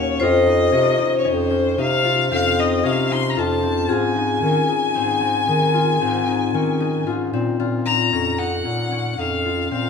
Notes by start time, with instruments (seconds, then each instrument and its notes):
Already playing: bass clarinet D#2, harp C#4 D#4 F#4, vibraphone A#4, violin C#5
0.20 bass clarinet F2, harp F4, vibraphone C5, violin D#5
0.46 harp D#4
0.72 bass clarinet C3, harp C#4
0.98 harp D#4
1.18 violin C#5
1.25 bass clarinet F2, harp C#4, violin C5
1.50 harp C#4
1.78 bass clarinet C3, harp D#4, violin F5
2.04 harp F4
2.31 bass clarinet F2, harp C4, violin F5
2.59 harp D#4, violin D#5
2.83 bass clarinet C3, harp C#4, violin F5
3.10 harp D#4, violin C6
3.30 violin A#5
3.37 bass clarinet F2, harp F4, violin A5
3.63 harp C4
3.89 bass clarinet G#2, harp F4, vibraphone G#4, violin G#5
4.16 harp D#4
4.42 bass clarinet D#3, harp C#4
4.68 harp D#4
4.95 bass clarinet G#2, harp C4
5.21 harp C4
5.47 bass clarinet D#3, harp D#4
5.74 harp F4
6.01 bass clarinet G#2, harp C4
6.27 harp D#4
6.53 bass clarinet D#3, harp C#4
6.80 harp D#4
7.06 bass clarinet G#2, harp F4
7.32 bass clarinet A#2, harp C4
7.59 bass clarinet A#2, harp F4
7.86 harp D#4, violin A#5
8.13 bass clarinet F2, harp C#4
8.38 harp D#4, violin F#5
8.65 bass clarinet A#2, harp C#4
8.92 harp C#4
9.18 bass clarinet F2, harp D#4, violin F5
9.45 harp F4
9.70 bass clarinet A#2, harp C4, violin F5